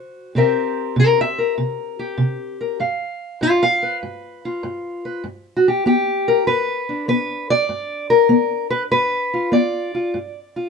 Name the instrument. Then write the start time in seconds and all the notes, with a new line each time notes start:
steel-string acoustic guitar
Already playing: D3 F#4 C5
0.35 C3 C4 G4 A#4 E5
0.96 C3 A#4
1.00 D5
1.21 E5
1.38 A#4
1.58 C3
1.99 G4
2.18 C3
2.61 A#4
2.80 G2 F5
3.41 G2 F4 D5
3.63 F5
3.83 B4
4.03 G2
4.45 F4
4.63 G2
5.05 B4
5.24 G2
5.57 F#4
5.68 G4
5.86 B3 G4
6.28 A#4
6.47 G2 B4
6.89 D4
7.08 B3 B4
7.50 D5
7.69 G2
8.10 A#4
8.29 B3
8.70 B4
8.91 G2 B4
9.34 F4
9.52 B3 D5
9.95 F4
10.14 G2
10.56 F4